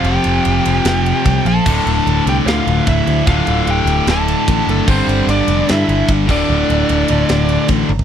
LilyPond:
<<
  \new Staff \with { instrumentName = "Lead electric guitar" } { \time 4/4 \key d \minor \tempo 4 = 149 g''2.~ g''8 a''8~ | a''4. g''8 f''4 e''4 | f''4 g''4 a''4. a'8 | c''4 d''4 e''4 r8 d''8~ |
d''2. r4 | }
  \new Staff \with { instrumentName = "Lead electric guitar" } { \time 4/4 \key d \minor g'2.~ g'8 a'8~ | a'4. g'8 f'4 e'4 | f'4 g'4 a'4. a8 | c'4 d'4 e'4 r8 d'8~ |
d'2. r4 | }
  \new Staff \with { instrumentName = "Distorted electric guitar" } { \clef bass \time 4/4 \key d \minor <f, c f>2.~ <f, c f>8 r8 | <d, a, d>1 | <d, a, d>1 | <g, d g>2.~ <g, d g>8 <d, a, d>8~ |
<d, a, d>2.~ <d, a, d>8 r8 | }
  \new Staff \with { instrumentName = "Distorted electric guitar" } { \clef bass \time 4/4 \key d \minor <f, c f>4. <f, c f>2 r8 | <d, a, d>2 <d, a, d>2 | <d, a, d>2 <d, a, d>2 | <g, d g>2 <g, d g>4. <d, a, d>8~ |
<d, a, d>4. <d, a, d>2 r8 | }
  \new Staff \with { instrumentName = "Picked electric bass" } { \clef bass \time 4/4 \key d \minor f,,8 f,,8 f,,8 f,,8 f,,4 c,8 bes,,8 | d,,8 d,,8 d,,8 c,8 d,8 d,,8 d,,8 d,8 | d,,8 d,,8 d,,8 d,,8 d,,4 a,,8 fis,,8 | g,,8 g,,8 g,,8 f,,8 g,8 g,,8 g,,8 d,,8 |
d,,8 d,,8 d,,8 d,,8 d,,4 a,,8 g,,8 | }
  \new DrumStaff \with { instrumentName = "Drums" } \drummode { \time 4/4 cymr8 cymr8 cymr8 cymr8 <cymr sn>8 cymr8 <bd cymr>8 cymr8 | <cymc bd>8 cymr8 cymr8 cymr8 <cymr sn>8 cymr8 <bd cymr>8 cymr8 | <bd cymr>8 cymr8 cymr8 cymr8 <cymr sn>8 cymr8 <bd cymr>8 cymr8 | <cymc bd>8 cymr8 cymr8 cymr8 <cymr sn>8 cymr8 <bd cymr>8 <cymc bd>8 |
r8 cymr8 cymr8 cymr8 <cymr sn>8 cymr8 <bd cymr>8 tommh16 tomfh16 | }
>>